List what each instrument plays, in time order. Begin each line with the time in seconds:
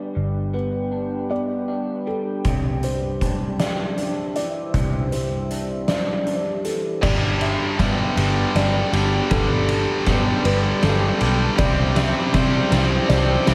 Already playing: picked electric bass G1, clean electric guitar G3 B3 D4, ambient pad D4 G4 B4 G5, felt piano D5
0.15 picked electric bass G1, clean electric guitar G2
0.54 clean electric guitar B3, felt piano B4
0.92 clean electric guitar D4
1.30 clean electric guitar B3, felt piano D5
1.68 clean electric guitar D4
2.07 clean electric guitar G3, felt piano A4
2.45 picked electric bass C2, clean electric guitar C3, ambient pad C5 E5, kick, closed hi-hat
2.83 clean electric guitar G3, felt piano C5, closed hi-hat
3.21 clean electric guitar D4, kick, closed hi-hat
3.60 clean electric guitar G3, felt piano D5, snare, closed hi-hat
3.98 clean electric guitar D4, closed hi-hat
4.36 clean electric guitar E3, felt piano D5, closed hi-hat
4.74 picked electric bass C2, clean electric guitar C3, kick, closed hi-hat
5.12 clean electric guitar G3, felt piano C5, closed hi-hat
5.51 clean electric guitar D4, closed hi-hat
5.88 clean electric guitar G3, felt piano D5, snare, closed hi-hat
6.27 clean electric guitar D4, closed hi-hat
6.65 clean electric guitar E3, felt piano A4, closed hi-hat
7.02 picked electric bass G1, distorted electric guitar G2 D3 G3, clean electric guitar G2, ambient pad B3 G4 D5 G5, felt piano D5, kick, snare, crash
7.41 felt piano E5, ride
7.78 distorted electric guitar G2 D3 G3, picked electric bass G2, clean electric guitar B3, kick, snare, ride
8.16 picked electric bass G1, distorted electric guitar G2 D3 G3, clean electric guitar G3, ride
8.55 picked electric bass G1, clean electric guitar D4, felt piano D5, snare, ride
8.92 picked electric bass G1, distorted electric guitar G2 D3 G3, clean electric guitar G4, ride
9.30 picked electric bass G1, distorted electric guitar G2 D3 G3, clean electric guitar G2, felt piano A4, kick, snare, ride
9.69 ride
10.06 distorted electric guitar G2 D3 G3, picked electric bass G2, clean electric guitar B3, kick, snare, ride
10.45 picked electric bass G1, distorted electric guitar G2 D3 G3, clean electric guitar G3, felt piano B4, ride
10.82 picked electric bass G1, clean electric guitar D4, felt piano A4, snare, ride
11.20 picked electric bass B1, distorted electric guitar G2 D3 G3, clean electric guitar G4, ride
11.57 picked electric bass C2, distorted electric guitar C3 G3 C4, clean electric guitar C3, ambient pad C4 E4, felt piano D5, kick, snare, ride
11.96 felt piano E5, snare, ride
12.33 distorted electric guitar C3 G3 C4, picked electric bass C3, clean electric guitar G3, kick, snare, ride
12.71 picked electric bass C2, distorted electric guitar C3 G3 C4, clean electric guitar E3, snare, ride
13.09 picked electric bass C2, clean electric guitar D4, felt piano D5, snare, ride
13.47 picked electric bass C2, distorted electric guitar C3 G3 C4, clean electric guitar G4, snare, ride